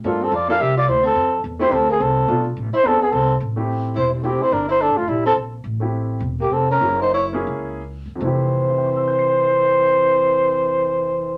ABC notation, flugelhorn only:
X:1
M:4/4
L:1/16
Q:"Swing" 1/4=214
K:F
V:1 name="Flugelhorn"
F2 A2 d2 f2 e2 d2 c2 A2- | A4 z2 c2 A2 _A2 =A4- | A2 z4 c2 A2 ^G2 A3 z | z8 c2 E2 G2 c2 |
B2 c2 A2 F2 E2 A2 z4 | z8 z2 G2 A2 B2- | B2 c2 _d2 z8 z2 | c16- |
c16 |]